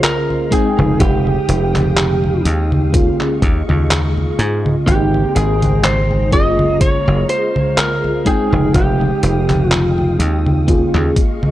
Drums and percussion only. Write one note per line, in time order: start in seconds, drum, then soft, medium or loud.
0.04 clap loud
0.04 closed hi-hat medium
0.04 high conga soft
0.30 high conga soft
0.52 kick medium
0.52 closed hi-hat medium
0.79 high conga medium
1.00 kick loud
1.00 closed hi-hat medium
1.00 high conga soft
1.27 high conga soft
1.49 closed hi-hat medium
1.76 clap soft
1.76 closed hi-hat soft
1.76 high conga medium
1.97 clap loud
1.97 closed hi-hat medium
1.97 high conga soft
2.24 high conga soft
2.45 closed hi-hat medium
2.72 high conga medium
2.94 kick loud
2.94 closed hi-hat medium
2.94 high conga soft
3.21 clap soft
3.21 high conga soft
3.42 kick loud
3.42 closed hi-hat medium
3.69 high conga medium
3.91 clap loud
3.91 closed hi-hat medium
3.91 high conga soft
4.17 high conga soft
4.39 closed hi-hat medium
4.66 high conga medium
4.87 kick loud
4.87 closed hi-hat medium
4.87 high conga soft
5.14 high conga soft
5.36 closed hi-hat medium
5.62 closed hi-hat soft
5.62 high conga medium
5.84 clap loud
5.84 closed hi-hat medium
5.84 high conga soft
6.11 high conga soft
6.32 kick loud
6.32 closed hi-hat medium
6.59 high conga medium
6.81 kick loud
6.81 closed hi-hat medium
6.81 high conga soft
7.08 high conga soft
7.29 closed hi-hat medium
7.56 high conga medium
7.78 clap loud
7.78 closed hi-hat medium
7.78 high conga soft
8.04 high conga soft
8.26 kick medium
8.26 closed hi-hat medium
8.53 high conga medium
8.74 kick loud
8.74 closed hi-hat medium
8.74 high conga soft
9.01 high conga soft
9.23 closed hi-hat medium
9.50 clap soft
9.50 closed hi-hat soft
9.50 high conga medium
9.72 clap loud
9.72 closed hi-hat medium
9.72 high conga soft
9.98 high conga soft
10.20 closed hi-hat medium
10.46 high conga medium
10.68 kick loud
10.68 closed hi-hat medium
10.68 high conga soft
10.95 clap soft
10.95 high conga soft
11.16 kick loud
11.16 closed hi-hat medium
11.43 high conga medium